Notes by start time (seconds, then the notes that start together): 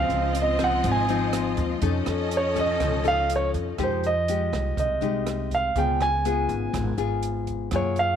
Already playing: C#3 F3 C4 D#4 F4 D#5 F5
0.09 C#2, closed hi-hat
0.35 closed hi-hat
0.42 D#5
0.59 F3 C4 D#4, kick, cross-stick, closed hi-hat
0.64 F#5
0.84 G#1 G#2, kick, closed hi-hat
0.91 G#5
1.09 F3 C4 D#4, closed hi-hat
1.33 cross-stick, closed hi-hat
1.57 D#2, kick, closed hi-hat
1.82 F2 F3 C#4 D#4 A4 D#5, kick, closed hi-hat
2.06 F2, cross-stick, closed hi-hat
2.31 closed hi-hat
2.37 C#5
2.56 C#4 D#4 A4, kick, closed hi-hat
2.60 D#5
2.80 C#2 F3, kick, cross-stick, closed hi-hat
3.04 C#4 D#4 A4, closed hi-hat
3.08 F5
3.30 closed hi-hat
3.36 C#5
3.54 F2, kick, closed hi-hat
3.78 F2 F3 G#3 D#4 G4, kick, cross-stick, closed hi-hat
3.83 C5
4.04 D#5, closed hi-hat
4.28 G#3 D#4 G4, closed hi-hat
4.53 C2, kick, cross-stick, closed hi-hat
4.77 C2 C3 D#5, kick, closed hi-hat
5.01 C2 G#3 D#4 G4, closed hi-hat
5.27 cross-stick, closed hi-hat
5.51 F5, kick, closed hi-hat
5.76 C#2 C#3 B3 F4 G#4 G5, kick, closed hi-hat
6.01 G#5, cross-stick, closed hi-hat
6.25 B3 F4 G#4, closed hi-hat
6.49 G#1, kick, closed hi-hat
6.73 G#1 G#2, kick, cross-stick, closed hi-hat
6.98 G#1 B3 F4 G#4, closed hi-hat
7.23 closed hi-hat
7.47 kick, closed hi-hat
7.71 F#2 F#3 A#3 F4 G#4, kick, cross-stick, closed hi-hat
7.76 C#5
7.96 F5, closed hi-hat